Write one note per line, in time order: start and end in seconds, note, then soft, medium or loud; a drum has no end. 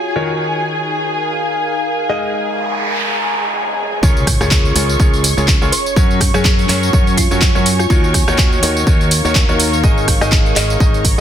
0.00 0.13 F#3 medium
0.00 0.13 C#4 medium
0.00 0.21 F4 medium
0.00 0.13 F#4 medium
0.00 0.94 F#4 medium
0.00 4.04 G#4 medium
0.00 0.13 A#4 medium
0.00 0.13 C#5 medium
0.00 0.94 C#5 medium
0.00 0.94 G#5 medium
0.00 4.04 G#5 medium
0.16 2.07 D#3 medium
0.16 2.07 D#4 medium
0.16 2.85 D#4 medium
0.16 2.07 F#4 medium
0.16 2.07 A#4 medium
0.16 2.07 C#5 medium
0.63 2.87 A#4 medium
0.89 2.87 F5 medium
2.09 4.00 G#3 medium
2.09 4.00 D#4 medium
2.09 6.61 G#4 medium
2.09 4.00 G#4 medium
2.09 4.00 A#4 medium
2.09 4.00 D#5 medium
2.09 noise sweep medium
2.71 4.71 A#5 medium
2.98 6.57 D#5 medium
4.03 4.38 C#2 loud
4.03 4.26 C#3 loud
4.03 6.61 C#4 medium
4.03 4.26 F4 medium
4.03 4.26 G#4 medium
4.03 4.26 A#4 medium
4.03 4.26 C#5 loud
4.03 11.21 C#5 medium
4.03 11.21 C#6 medium
4.03 kick loud
4.03 tambourine soft
4.03 sub drop medium
4.17 tambourine soft
4.27 kick medium
4.27 cross-stick medium
4.27 open hi-hat loud
4.27 tambourine medium
4.41 4.73 C#2 loud
4.41 4.73 C#3 loud
4.41 4.73 F4 medium
4.41 4.73 G#4 medium
4.41 4.73 A#4 medium
4.41 4.73 C#5 loud
4.41 cross-stick medium
4.41 tambourine soft
4.51 kick loud
4.51 clap loud
4.51 tambourine soft
4.65 tambourine soft
4.76 4.98 C#2 medium
4.76 4.97 C#3 medium
4.76 4.97 F4 medium
4.76 4.97 G#4 medium
4.76 4.97 A#4 medium
4.76 4.97 C#5 medium
4.76 open hi-hat loud
4.76 tambourine medium
4.89 tambourine soft
5.00 5.35 C#2 medium
5.00 5.23 C#3 medium
5.00 5.23 F4 medium
5.00 5.23 G#4 medium
5.00 5.23 A#4 medium
5.00 5.22 C#5 medium
5.00 kick loud
5.00 tambourine soft
5.14 tambourine soft
5.24 open hi-hat loud
5.24 tambourine medium
5.37 5.59 C#2 loud
5.37 5.50 C#3 medium
5.37 5.50 F4 medium
5.37 5.50 G#4 medium
5.37 5.50 A#4 medium
5.37 5.50 C#5 medium
5.37 tambourine soft
5.48 kick loud
5.48 clap loud
5.48 tambourine soft
5.62 5.69 C#2 loud
5.62 5.71 F4 medium
5.62 5.71 G#4 medium
5.62 5.71 A#4 medium
5.62 5.71 C#5 loud
5.62 tambourine soft
5.72 8.68 F#4 medium
5.72 5.93 C#5 medium
5.72 open hi-hat loud
5.72 tambourine medium
5.86 tambourine soft
5.96 6.31 F#2 medium
5.96 6.19 F#3 loud
5.96 6.19 C#4 medium
5.96 6.19 F#4 medium
5.96 6.19 A#4 medium
5.96 6.19 C#5 loud
5.96 kick loud
5.96 tambourine soft
6.11 tambourine soft
6.18 8.68 C#5 medium
6.18 kick medium
6.18 cross-stick medium
6.18 open hi-hat loud
6.18 tambourine medium
6.34 6.67 F#2 loud
6.34 6.66 F#3 loud
6.34 6.66 C#4 medium
6.34 6.67 F#4 medium
6.34 6.54 G#4 medium
6.34 6.66 A#4 medium
6.34 6.66 C#5 loud
6.34 cross-stick medium
6.34 tambourine soft
6.45 kick loud
6.45 clap loud
6.45 tambourine soft
6.59 tambourine soft
6.69 6.91 F#2 medium
6.69 6.91 F#3 medium
6.69 6.91 C#4 medium
6.69 6.91 F#4 medium
6.69 6.91 A#4 medium
6.69 6.91 C#5 medium
6.69 8.68 G#5 medium
6.69 clap medium
6.69 open hi-hat loud
6.69 tambourine medium
6.83 tambourine soft
6.93 7.28 F#2 loud
6.93 7.16 F#3 medium
6.93 7.16 C#4 medium
6.93 7.16 F#4 medium
6.93 7.16 A#4 medium
6.93 7.16 C#5 medium
6.93 kick loud
6.93 tambourine soft
7.07 tambourine soft
7.17 7.38 F4 medium
7.17 kick medium
7.17 open hi-hat loud
7.17 tambourine medium
7.31 7.53 F#2 loud
7.31 7.44 F#3 medium
7.31 7.44 C#4 medium
7.31 7.44 F#4 medium
7.31 7.44 A#4 medium
7.31 7.44 C#5 medium
7.31 tambourine soft
7.42 kick loud
7.42 clap loud
7.42 tambourine soft
7.55 7.88 F#2 medium
7.55 7.68 F#3 medium
7.55 7.68 C#4 medium
7.55 7.68 F#4 medium
7.55 7.68 A#4 medium
7.55 7.68 C#5 loud
7.55 tambourine soft
7.66 open hi-hat loud
7.66 tambourine medium
7.79 7.86 F4 medium
7.79 cross-stick medium
7.79 tambourine soft
7.90 8.25 D#2 loud
7.90 8.13 D#3 loud
7.90 10.62 D#4 medium
7.90 8.13 D#4 medium
7.90 7.99 F4 medium
7.90 8.13 F#4 medium
7.90 8.13 A#4 medium
7.90 8.13 C#5 loud
7.90 kick loud
7.90 tambourine soft
8.04 tambourine soft
8.14 kick medium
8.14 cross-stick medium
8.14 open hi-hat loud
8.14 tambourine medium
8.28 8.61 D#2 loud
8.28 8.60 D#3 loud
8.28 8.60 D#4 medium
8.28 8.60 F#4 medium
8.28 8.60 A#4 medium
8.28 8.60 C#5 loud
8.28 cross-stick medium
8.28 tambourine soft
8.38 kick loud
8.38 clap loud
8.38 tambourine soft
8.52 tambourine soft
8.63 8.85 D#2 loud
8.63 8.84 D#3 medium
8.63 8.84 D#4 medium
8.63 8.84 F#4 medium
8.63 8.84 A#4 medium
8.63 8.84 C#5 medium
8.63 open hi-hat loud
8.63 tambourine medium
8.75 10.62 A#4 medium
8.75 10.62 F5 medium
8.75 tambourine soft
8.87 9.22 D#2 medium
8.87 9.10 D#3 medium
8.87 9.10 D#4 medium
8.87 9.10 F#4 medium
8.87 9.10 A#4 medium
8.87 9.10 C#5 medium
8.87 kick loud
8.87 tambourine soft
9.01 tambourine soft
9.11 open hi-hat loud
9.11 tambourine medium
9.25 9.46 D#2 loud
9.25 9.38 D#3 medium
9.25 9.38 D#4 medium
9.25 9.38 F#4 medium
9.25 9.38 A#4 medium
9.25 9.38 C#5 medium
9.25 tambourine soft
9.35 kick loud
9.35 clap loud
9.35 tambourine soft
9.49 9.82 D#2 medium
9.49 9.62 D#3 medium
9.49 9.62 D#4 medium
9.49 9.62 F#4 medium
9.49 9.62 A#4 medium
9.49 9.62 C#5 loud
9.49 tambourine soft
9.60 open hi-hat loud
9.60 tambourine medium
9.73 tambourine soft
9.84 10.19 G#1 loud
9.84 10.07 G#3 loud
9.84 10.06 D#4 medium
9.84 11.21 G#4 medium
9.84 10.07 G#4 medium
9.84 10.07 A#4 medium
9.84 10.06 D#5 loud
9.84 kick loud
9.84 tambourine soft
9.98 tambourine soft
10.08 kick medium
10.08 cross-stick medium
10.08 open hi-hat loud
10.08 tambourine medium
10.21 10.54 G#1 loud
10.21 10.54 G#3 loud
10.21 10.54 D#4 medium
10.21 10.54 G#4 medium
10.21 10.54 A#4 medium
10.21 10.54 D#5 loud
10.21 cross-stick medium
10.21 tambourine soft
10.32 kick loud
10.32 clap loud
10.32 tambourine soft
10.46 tambourine soft
10.52 11.21 A#5 medium
10.56 10.78 G#1 loud
10.56 10.78 G#3 medium
10.56 10.78 D#4 medium
10.56 10.78 G#4 medium
10.56 10.78 A#4 medium
10.56 10.78 D#5 medium
10.56 clap medium
10.56 open hi-hat loud
10.56 tambourine medium
10.70 11.21 D#5 medium
10.70 tambourine soft
10.80 11.15 G#1 medium
10.80 11.03 G#3 medium
10.80 11.03 D#4 medium
10.80 11.03 G#4 medium
10.80 11.03 A#4 medium
10.80 11.03 D#5 medium
10.80 kick loud
10.80 tambourine soft
10.94 tambourine soft
11.05 kick medium
11.05 open hi-hat loud
11.05 tambourine medium